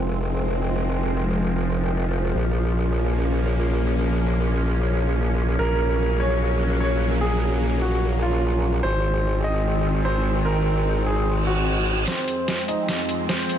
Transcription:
Already playing: F1 F3 G#3 C4
2.34 A#1 A#3 C#4
5.59 A#1 F#3 A#3 A#4
6.20 C#5
6.80 C#5
7.21 G#4
7.82 F#4
8.22 F4
8.83 G#1 D#3 G#3 C4 C5
9.44 D#5
10.05 C5
10.45 A#4
11.06 G#4
11.26 reverse cymbal
11.47 F#4
12.07 F2 F3 G#3 C4 C5, snare, closed hi-hat, riser
12.28 closed hi-hat
12.48 snare, closed hi-hat
12.68 D#4 D#5, closed hi-hat
12.88 snare, closed hi-hat
13.09 closed hi-hat
13.29 C4 C5, snare, closed hi-hat
13.49 closed hi-hat

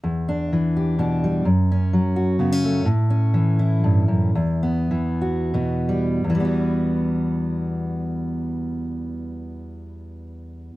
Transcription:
0.04 E2
0.29 D4
0.53 E3
0.77 G4
0.99 B2 D4
1.24 G3
1.45 F#2
1.72 C#4
1.93 F#3
2.16 F#4
2.39 C#3 B3
2.52 C#4
2.64 A3
2.85 A2
3.10 C#4
3.34 E3
3.59 E4
3.84 G2
4.08 F#2
4.35 E2
4.63 B3
4.91 E3
5.21 F#4
5.54 B2 B3
5.89 G3
6.24 E2
6.30 E3
6.35 G3
6.40 B3
6.45 F#4

